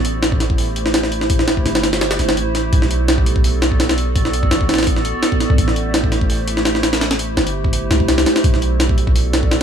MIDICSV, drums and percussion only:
0, 0, Header, 1, 2, 480
1, 0, Start_track
1, 0, Tempo, 357143
1, 1746, Time_signature, 4, 2, 24, 8
1, 12940, End_track
2, 0, Start_track
2, 0, Title_t, "Drums"
2, 63, Note_on_c, 9, 46, 71
2, 198, Note_off_c, 9, 46, 0
2, 303, Note_on_c, 9, 38, 124
2, 303, Note_on_c, 9, 46, 90
2, 431, Note_on_c, 9, 36, 101
2, 438, Note_off_c, 9, 38, 0
2, 438, Note_off_c, 9, 46, 0
2, 542, Note_on_c, 9, 38, 50
2, 542, Note_on_c, 9, 46, 69
2, 565, Note_off_c, 9, 36, 0
2, 671, Note_on_c, 9, 36, 102
2, 677, Note_off_c, 9, 38, 0
2, 677, Note_off_c, 9, 46, 0
2, 783, Note_on_c, 9, 46, 84
2, 806, Note_off_c, 9, 36, 0
2, 917, Note_off_c, 9, 46, 0
2, 1023, Note_on_c, 9, 46, 72
2, 1151, Note_on_c, 9, 38, 59
2, 1157, Note_off_c, 9, 46, 0
2, 1264, Note_off_c, 9, 38, 0
2, 1264, Note_on_c, 9, 38, 121
2, 1264, Note_on_c, 9, 46, 90
2, 1391, Note_off_c, 9, 38, 0
2, 1391, Note_on_c, 9, 38, 55
2, 1398, Note_off_c, 9, 46, 0
2, 1503, Note_on_c, 9, 46, 69
2, 1525, Note_off_c, 9, 38, 0
2, 1631, Note_on_c, 9, 38, 54
2, 1637, Note_off_c, 9, 46, 0
2, 1744, Note_on_c, 9, 36, 116
2, 1744, Note_on_c, 9, 46, 91
2, 1765, Note_off_c, 9, 38, 0
2, 1872, Note_on_c, 9, 38, 58
2, 1878, Note_off_c, 9, 36, 0
2, 1878, Note_off_c, 9, 46, 0
2, 1984, Note_off_c, 9, 38, 0
2, 1984, Note_on_c, 9, 38, 107
2, 1984, Note_on_c, 9, 46, 82
2, 2113, Note_on_c, 9, 36, 83
2, 2119, Note_off_c, 9, 38, 0
2, 2119, Note_off_c, 9, 46, 0
2, 2226, Note_on_c, 9, 38, 46
2, 2226, Note_on_c, 9, 46, 66
2, 2247, Note_off_c, 9, 36, 0
2, 2354, Note_off_c, 9, 38, 0
2, 2354, Note_off_c, 9, 46, 0
2, 2354, Note_on_c, 9, 38, 107
2, 2354, Note_on_c, 9, 46, 82
2, 2466, Note_off_c, 9, 38, 0
2, 2466, Note_off_c, 9, 46, 0
2, 2466, Note_on_c, 9, 38, 107
2, 2466, Note_on_c, 9, 46, 81
2, 2593, Note_off_c, 9, 38, 0
2, 2593, Note_off_c, 9, 46, 0
2, 2593, Note_on_c, 9, 38, 110
2, 2593, Note_on_c, 9, 46, 80
2, 2705, Note_off_c, 9, 38, 0
2, 2705, Note_off_c, 9, 46, 0
2, 2705, Note_on_c, 9, 38, 111
2, 2705, Note_on_c, 9, 46, 81
2, 2832, Note_off_c, 9, 38, 0
2, 2832, Note_off_c, 9, 46, 0
2, 2832, Note_on_c, 9, 38, 110
2, 2832, Note_on_c, 9, 46, 83
2, 2946, Note_off_c, 9, 38, 0
2, 2946, Note_off_c, 9, 46, 0
2, 2946, Note_on_c, 9, 38, 39
2, 2946, Note_on_c, 9, 46, 70
2, 3073, Note_off_c, 9, 38, 0
2, 3073, Note_on_c, 9, 38, 118
2, 3080, Note_off_c, 9, 46, 0
2, 3187, Note_on_c, 9, 46, 90
2, 3207, Note_off_c, 9, 38, 0
2, 3321, Note_off_c, 9, 46, 0
2, 3425, Note_on_c, 9, 38, 42
2, 3425, Note_on_c, 9, 46, 70
2, 3560, Note_off_c, 9, 38, 0
2, 3560, Note_off_c, 9, 46, 0
2, 3665, Note_on_c, 9, 36, 114
2, 3665, Note_on_c, 9, 46, 93
2, 3792, Note_on_c, 9, 38, 51
2, 3799, Note_off_c, 9, 36, 0
2, 3799, Note_off_c, 9, 46, 0
2, 3906, Note_on_c, 9, 46, 69
2, 3927, Note_off_c, 9, 38, 0
2, 4041, Note_off_c, 9, 46, 0
2, 4145, Note_on_c, 9, 38, 122
2, 4145, Note_on_c, 9, 46, 91
2, 4273, Note_on_c, 9, 36, 98
2, 4279, Note_off_c, 9, 38, 0
2, 4279, Note_off_c, 9, 46, 0
2, 4387, Note_on_c, 9, 46, 68
2, 4407, Note_off_c, 9, 36, 0
2, 4513, Note_on_c, 9, 36, 97
2, 4521, Note_off_c, 9, 46, 0
2, 4626, Note_on_c, 9, 46, 81
2, 4648, Note_off_c, 9, 36, 0
2, 4761, Note_off_c, 9, 46, 0
2, 4866, Note_on_c, 9, 38, 112
2, 4866, Note_on_c, 9, 46, 82
2, 4993, Note_on_c, 9, 36, 87
2, 5001, Note_off_c, 9, 38, 0
2, 5001, Note_off_c, 9, 46, 0
2, 5105, Note_on_c, 9, 38, 107
2, 5105, Note_on_c, 9, 46, 83
2, 5127, Note_off_c, 9, 36, 0
2, 5233, Note_off_c, 9, 38, 0
2, 5233, Note_off_c, 9, 46, 0
2, 5233, Note_on_c, 9, 38, 110
2, 5233, Note_on_c, 9, 46, 85
2, 5346, Note_off_c, 9, 46, 0
2, 5346, Note_on_c, 9, 46, 61
2, 5368, Note_off_c, 9, 38, 0
2, 5480, Note_off_c, 9, 46, 0
2, 5585, Note_on_c, 9, 36, 119
2, 5586, Note_on_c, 9, 46, 91
2, 5714, Note_on_c, 9, 38, 58
2, 5720, Note_off_c, 9, 36, 0
2, 5721, Note_off_c, 9, 46, 0
2, 5826, Note_on_c, 9, 46, 69
2, 5849, Note_off_c, 9, 38, 0
2, 5953, Note_on_c, 9, 36, 96
2, 5960, Note_off_c, 9, 46, 0
2, 6064, Note_on_c, 9, 38, 120
2, 6064, Note_on_c, 9, 46, 94
2, 6087, Note_off_c, 9, 36, 0
2, 6192, Note_on_c, 9, 36, 99
2, 6199, Note_off_c, 9, 38, 0
2, 6199, Note_off_c, 9, 46, 0
2, 6304, Note_on_c, 9, 38, 89
2, 6304, Note_on_c, 9, 46, 67
2, 6327, Note_off_c, 9, 36, 0
2, 6367, Note_off_c, 9, 38, 0
2, 6367, Note_off_c, 9, 46, 0
2, 6367, Note_on_c, 9, 38, 91
2, 6367, Note_on_c, 9, 46, 72
2, 6430, Note_off_c, 9, 38, 0
2, 6430, Note_off_c, 9, 46, 0
2, 6430, Note_on_c, 9, 38, 91
2, 6430, Note_on_c, 9, 46, 69
2, 6487, Note_off_c, 9, 38, 0
2, 6487, Note_off_c, 9, 46, 0
2, 6487, Note_on_c, 9, 38, 93
2, 6487, Note_on_c, 9, 46, 70
2, 6544, Note_off_c, 9, 46, 0
2, 6544, Note_on_c, 9, 36, 102
2, 6544, Note_on_c, 9, 46, 81
2, 6622, Note_off_c, 9, 38, 0
2, 6672, Note_on_c, 9, 38, 46
2, 6678, Note_off_c, 9, 46, 0
2, 6679, Note_off_c, 9, 36, 0
2, 6785, Note_on_c, 9, 46, 63
2, 6807, Note_off_c, 9, 38, 0
2, 6919, Note_off_c, 9, 46, 0
2, 7024, Note_on_c, 9, 38, 108
2, 7024, Note_on_c, 9, 46, 82
2, 7152, Note_on_c, 9, 36, 91
2, 7158, Note_off_c, 9, 38, 0
2, 7158, Note_off_c, 9, 46, 0
2, 7264, Note_on_c, 9, 38, 44
2, 7264, Note_on_c, 9, 46, 62
2, 7286, Note_off_c, 9, 36, 0
2, 7392, Note_on_c, 9, 36, 86
2, 7398, Note_off_c, 9, 38, 0
2, 7398, Note_off_c, 9, 46, 0
2, 7503, Note_on_c, 9, 46, 91
2, 7504, Note_off_c, 9, 36, 0
2, 7504, Note_on_c, 9, 36, 113
2, 7631, Note_on_c, 9, 38, 52
2, 7638, Note_off_c, 9, 36, 0
2, 7638, Note_off_c, 9, 46, 0
2, 7744, Note_on_c, 9, 46, 70
2, 7766, Note_off_c, 9, 38, 0
2, 7878, Note_off_c, 9, 46, 0
2, 7983, Note_on_c, 9, 38, 120
2, 7983, Note_on_c, 9, 46, 94
2, 8112, Note_on_c, 9, 36, 103
2, 8118, Note_off_c, 9, 38, 0
2, 8118, Note_off_c, 9, 46, 0
2, 8224, Note_on_c, 9, 38, 50
2, 8224, Note_on_c, 9, 46, 70
2, 8247, Note_off_c, 9, 36, 0
2, 8352, Note_on_c, 9, 36, 97
2, 8358, Note_off_c, 9, 38, 0
2, 8358, Note_off_c, 9, 46, 0
2, 8463, Note_on_c, 9, 46, 85
2, 8486, Note_off_c, 9, 36, 0
2, 8597, Note_off_c, 9, 46, 0
2, 8703, Note_on_c, 9, 46, 72
2, 8831, Note_on_c, 9, 38, 57
2, 8837, Note_off_c, 9, 46, 0
2, 8942, Note_off_c, 9, 38, 0
2, 8942, Note_on_c, 9, 38, 120
2, 8942, Note_on_c, 9, 46, 93
2, 9071, Note_off_c, 9, 38, 0
2, 9071, Note_on_c, 9, 38, 55
2, 9077, Note_off_c, 9, 46, 0
2, 9184, Note_off_c, 9, 38, 0
2, 9184, Note_on_c, 9, 38, 109
2, 9184, Note_on_c, 9, 46, 83
2, 9312, Note_off_c, 9, 38, 0
2, 9312, Note_off_c, 9, 46, 0
2, 9312, Note_on_c, 9, 38, 109
2, 9312, Note_on_c, 9, 46, 84
2, 9426, Note_off_c, 9, 38, 0
2, 9426, Note_off_c, 9, 46, 0
2, 9426, Note_on_c, 9, 38, 109
2, 9426, Note_on_c, 9, 46, 83
2, 9553, Note_off_c, 9, 38, 0
2, 9553, Note_off_c, 9, 46, 0
2, 9553, Note_on_c, 9, 38, 110
2, 9553, Note_on_c, 9, 46, 86
2, 9666, Note_off_c, 9, 46, 0
2, 9666, Note_on_c, 9, 46, 82
2, 9688, Note_off_c, 9, 38, 0
2, 9801, Note_off_c, 9, 46, 0
2, 9908, Note_on_c, 9, 38, 111
2, 10035, Note_on_c, 9, 46, 79
2, 10042, Note_off_c, 9, 38, 0
2, 10169, Note_off_c, 9, 46, 0
2, 10274, Note_on_c, 9, 36, 100
2, 10389, Note_on_c, 9, 46, 92
2, 10409, Note_off_c, 9, 36, 0
2, 10523, Note_off_c, 9, 46, 0
2, 10627, Note_on_c, 9, 38, 108
2, 10627, Note_on_c, 9, 46, 83
2, 10754, Note_on_c, 9, 36, 86
2, 10762, Note_off_c, 9, 38, 0
2, 10762, Note_off_c, 9, 46, 0
2, 10866, Note_on_c, 9, 38, 107
2, 10866, Note_on_c, 9, 46, 82
2, 10888, Note_off_c, 9, 36, 0
2, 10994, Note_off_c, 9, 38, 0
2, 10994, Note_off_c, 9, 46, 0
2, 10994, Note_on_c, 9, 38, 113
2, 10994, Note_on_c, 9, 46, 84
2, 11106, Note_off_c, 9, 38, 0
2, 11106, Note_off_c, 9, 46, 0
2, 11106, Note_on_c, 9, 38, 106
2, 11106, Note_on_c, 9, 46, 82
2, 11234, Note_off_c, 9, 38, 0
2, 11234, Note_off_c, 9, 46, 0
2, 11234, Note_on_c, 9, 38, 108
2, 11234, Note_on_c, 9, 46, 82
2, 11346, Note_off_c, 9, 46, 0
2, 11346, Note_on_c, 9, 36, 114
2, 11346, Note_on_c, 9, 46, 91
2, 11368, Note_off_c, 9, 38, 0
2, 11475, Note_on_c, 9, 38, 49
2, 11480, Note_off_c, 9, 36, 0
2, 11481, Note_off_c, 9, 46, 0
2, 11586, Note_on_c, 9, 46, 72
2, 11609, Note_off_c, 9, 38, 0
2, 11720, Note_off_c, 9, 46, 0
2, 11826, Note_on_c, 9, 38, 120
2, 11826, Note_on_c, 9, 46, 92
2, 11954, Note_on_c, 9, 36, 96
2, 11961, Note_off_c, 9, 38, 0
2, 11961, Note_off_c, 9, 46, 0
2, 12066, Note_on_c, 9, 46, 71
2, 12088, Note_off_c, 9, 36, 0
2, 12193, Note_on_c, 9, 36, 101
2, 12200, Note_off_c, 9, 46, 0
2, 12306, Note_on_c, 9, 46, 83
2, 12328, Note_off_c, 9, 36, 0
2, 12440, Note_off_c, 9, 46, 0
2, 12546, Note_on_c, 9, 38, 110
2, 12546, Note_on_c, 9, 46, 80
2, 12674, Note_on_c, 9, 36, 87
2, 12681, Note_off_c, 9, 38, 0
2, 12681, Note_off_c, 9, 46, 0
2, 12787, Note_on_c, 9, 38, 110
2, 12787, Note_on_c, 9, 46, 83
2, 12808, Note_off_c, 9, 36, 0
2, 12922, Note_off_c, 9, 38, 0
2, 12922, Note_off_c, 9, 46, 0
2, 12940, End_track
0, 0, End_of_file